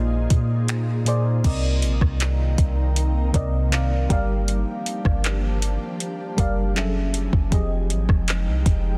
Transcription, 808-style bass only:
Already playing: A#1
0.31 A#2
1.45 C2
1.83 A#1
2.02 C2
2.58 C2
3.35 C2
4.10 G1
5.05 G1
6.38 F#1
7.33 F#1
7.91 G#1
8.09 F1
8.47 C2
8.66 F1

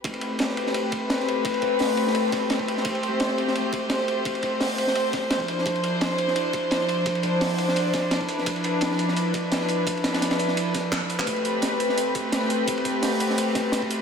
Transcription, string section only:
0.05 A3 C4 G4 B4
2.85 C5
5.48 F3 D4 E4
8.29 B4
11.27 A3 C4 G4

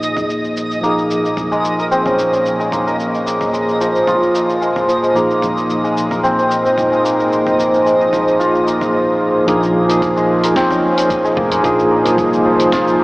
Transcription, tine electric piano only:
Already playing: A#2 F3 A#3 D#4 G#4
0.81 F3 A#3 D#4
0.85 G#4
5.14 A#2 F3 A#3 D#4 G#4
9.47 F3 A#3 D#4 G#4
9.87 F3 A#3 D#4
9.92 G#4
11.63 F3 A#3 D#4 G#4
12.04 F3 A#3 D#4
12.08 G#4

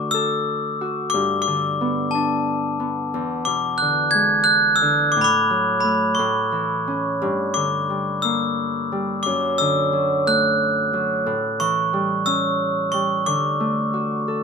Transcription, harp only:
Already playing: D3 A3 F#4 A4 D5 A5
0.14 A4
0.81 F#4
1.14 G2
1.47 D3
1.81 B3
2.15 D4
2.80 B3
3.14 E2
3.47 B2
3.82 D3
4.14 G#3
4.82 D3
5.16 A2
5.50 F#3
5.84 A3
6.19 A2
6.52 E3
6.87 C#4
7.22 G2
7.56 D3
7.90 G3
8.24 A#3
8.92 G3
9.26 F#2
9.61 D3
9.93 F#3
10.27 A3
10.93 F#3
11.26 A2
11.60 E3
11.93 G3
12.26 C#4
12.94 G3
13.27 D3
13.60 A3
13.93 F#4
14.28 A4

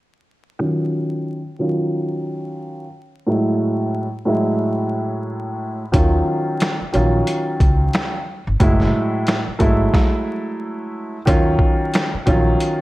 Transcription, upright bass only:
5.94 D#2
6.81 muted upright bass stroke
6.94 A#1
7.61 C#2
8.47 G1
8.61 F#1
9.48 muted upright bass stroke
9.61 G#1
11.28 D#2
12.14 muted upright bass stroke
12.27 A#1

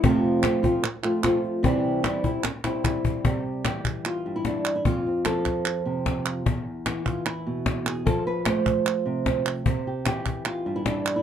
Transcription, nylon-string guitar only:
0.03 F2 C3 F3 A3 C4 F4
0.43 F3 A3 C4 F4
0.63 F3 A3 C4 F4
0.83 muted nylon-string guitar stroke
1.03 F3 A3 C4 F4
1.23 F3 A3 C4 F4
1.63 C3 E3 G3 C4 E4
2.03 E3 G3 C4 E4
2.24 G3 C4 E4
2.44 muted nylon-string guitar stroke
2.64 G3 C4 E4
2.84 G3 C4 E4
3.25 C3 G3 G4
3.65 E3 G4
4.06 F4
4.26 G2
4.36 E4
4.46 D4
4.76 E4
4.86 F2 F4
5.07 C4
5.25 F3 A4
5.85 C3
6.26 F4
6.46 E2
6.86 E3
7.06 F4
7.26 E4
7.47 B2
7.86 G#4
8.06 F3 A4
8.27 B4
8.46 A3 C5
8.87 F4
9.06 C3
9.26 C4
9.66 C3
9.87 G4
10.06 E3 G4
10.46 F4
10.66 G2
10.76 E4
10.86 D4
11.07 G3
11.16 E4

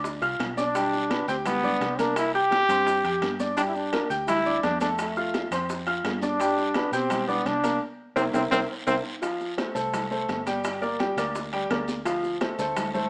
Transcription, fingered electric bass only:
Already playing: D2
0.21 C2
0.39 B1
1.28 D2
1.81 C2
2.69 G2
3.04 F2
3.22 G2
4.10 D2
4.64 F2
5.51 F2
6.04 G2
6.92 B2
7.45 C2
8.16 C2
8.34 C2
8.51 C2
8.87 C2
9.75 C2
10.29 G1
11.17 D2
11.70 D2
12.59 D2

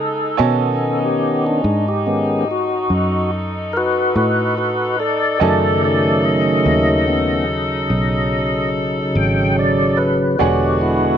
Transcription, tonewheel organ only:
Already playing: A4
0.39 D#3 B3 C#4
1.05 G4
1.46 D4
1.88 G4
2.06 D#3 G#3 B3 C#4
2.51 F#4
3.73 F#4 A#4 B4
4.16 F#4 B4
4.57 F#4 B4
5.00 A4 D5
5.41 C#3 D#3 F#3 A3 A4 D5
5.84 A4 D5
6.25 D#5
7.08 D#3 A3 B3 C#4
9.16 G5
9.59 D5
9.97 B4
10.39 D3 G#3 B3 F#4 G4
10.81 E4

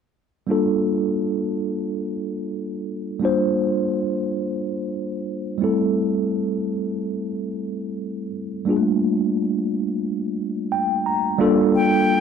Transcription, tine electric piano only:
0.47 G3 A#3 D4 F4
0.51 A4
3.20 G3 A#3 D4
3.24 F4 C5
5.58 G3 A3 C4
5.62 E4 A4
8.65 G3 A#3 D4 F4
8.70 G#4
8.77 A3
10.72 G5
11.06 A#5
11.38 G3 A#3 D4 F4 A4

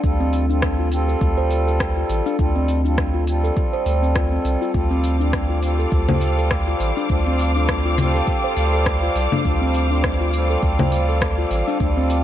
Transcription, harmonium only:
0.03 G3 C4 F4 A4
0.48 G3 C4 F4 A4
0.90 G3 C4 F4
0.94 A4
2.38 G3 C4 F4 A4
2.84 G3 C4 F4 A4
3.26 G3 C4 F4 A4
4.74 G3 C4 F4 A4
5.19 G3 C4 F4 A4
5.61 G3 C4 F4 A4
7.08 G3 C4 F4 A4
7.55 G3 C4 F4 A4
7.96 G3 C4 F4
8.00 A4
9.44 G3 C4 F4 A4
9.90 G3 C4 F4 A4
10.32 G3 C4 F4
10.36 A4
11.80 G3 C4 F4 A4

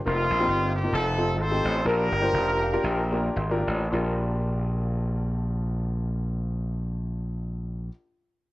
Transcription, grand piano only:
0.06 A#3 C4 D#4 F4 A#4
0.40 A#3 C4 D#4 F4 G4
0.83 A#3 C4 D#4 F4 A#4
1.18 A3 C4 D#4 F4 A4
1.51 A3 C4 D#4 F4 G4
1.85 A#2 A#3 D4 F4 G4 A#4
2.21 A#3 D4 F4 G4 C5
2.62 F5
2.73 A#3 D4 F4 G4 A#4
2.84 G5
3.12 A#3 D4 F4 G4 A#4
3.36 C6
3.51 A#3 D4 F4 G4 A#4
3.91 A#1 D4 F4 G4 A#4

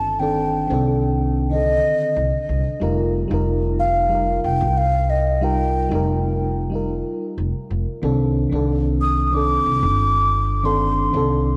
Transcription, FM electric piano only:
Already playing: D#3 C4 D4 A4
0.20 D#3 C4 D4 A4
0.68 D#3 C4
0.72 D4 A4
1.49 D3 D#3 C4
1.55 A4
2.80 G3 D#4 F4 A#4
3.28 G3 D#4
3.32 F4 A#4
4.09 G3 D#4
4.13 F4 A#4
5.41 G3 D#4 F4 A#4
5.89 G3 D#4
5.93 F4 A#4
6.70 G3 D#4
6.74 F4 A#4
8.02 D#3 C4 D4 A4
8.50 D#3 C4 D4
8.55 A4
9.31 D#3 C4 D4
9.37 A4
10.63 D#3 C4 D4 A4
11.11 D#3 C4 D4
11.17 A4

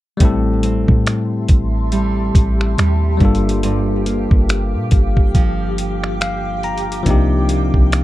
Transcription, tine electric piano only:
0.17 G3 A3
0.21 C4 E4 A4
3.17 G3 A#3 D4
3.23 F4 A4
6.21 F5
6.64 A#5
7.03 F3 A#3 D4
7.09 D#4 G4

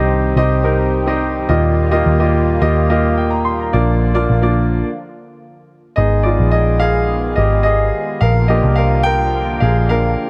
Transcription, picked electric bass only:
Already playing: C2
0.36 C2
1.49 D#2
2.06 D#2
2.62 D#2
3.74 A#1
4.30 A#1
5.98 G#1
6.40 A#1
7.38 G#1
8.22 A#1
8.64 C2
9.62 A#1

